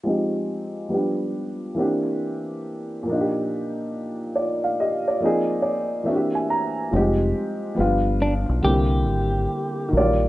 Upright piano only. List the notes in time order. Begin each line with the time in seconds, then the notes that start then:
0.04 F3 G#3 C4
0.08 D#4 G4
0.89 F3 G3 B3 D4
0.94 G4
1.75 E3 A#3 C4
1.79 D4 G4
3.03 A#2 F3
3.07 A#3 D4
3.11 D#4 F4
3.20 G4
4.36 F4 D5
4.64 F5
4.80 G4 D#5
5.08 F4 D5
5.20 F3 A#3 C4 D#4
5.26 G#4
5.62 D5
6.04 E3 A#3 C4 D4 E5
6.09 F#4
6.15 G4
6.35 G#5
6.50 A#5
6.91 F3 G3 C4
6.95 G#3 D#4 G4
7.75 F3 G3 B3
7.79 D4 F4
8.61 D3 G3 A#3
8.66 C4 E4
9.89 D#3 F#3
9.94 G3 A#3 D5
10.00 F4